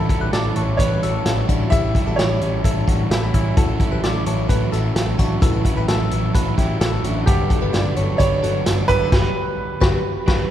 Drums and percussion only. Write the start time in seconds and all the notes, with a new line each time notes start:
0.09 kick, closed hi-hat
0.33 snare, closed hi-hat
0.56 closed hi-hat
0.79 kick, closed hi-hat
1.03 closed hi-hat
1.26 snare, closed hi-hat
1.49 kick, closed hi-hat
1.72 kick, closed hi-hat
1.95 kick, closed hi-hat
2.19 snare, closed hi-hat
2.41 closed hi-hat
2.64 kick, closed hi-hat
2.88 kick, closed hi-hat
3.11 snare, closed hi-hat
3.34 kick, closed hi-hat
3.57 kick, closed hi-hat
3.80 kick, closed hi-hat
4.03 snare, closed hi-hat
4.26 closed hi-hat
4.49 kick, closed hi-hat
4.73 closed hi-hat
4.96 snare, closed hi-hat
5.19 kick, closed hi-hat
5.42 kick, closed hi-hat
5.65 kick, closed hi-hat
5.88 snare, closed hi-hat
6.11 closed hi-hat
6.35 kick, closed hi-hat
6.58 kick, snare, closed hi-hat
6.81 snare, closed hi-hat
7.04 closed hi-hat
7.27 kick, closed hi-hat
7.50 kick, closed hi-hat
7.74 snare, closed hi-hat
7.97 closed hi-hat
8.20 kick, closed hi-hat
8.44 closed hi-hat
8.66 snare, closed hi-hat
8.89 kick, closed hi-hat
9.12 kick, snare, crash
9.82 kick, snare
10.28 kick, snare, crash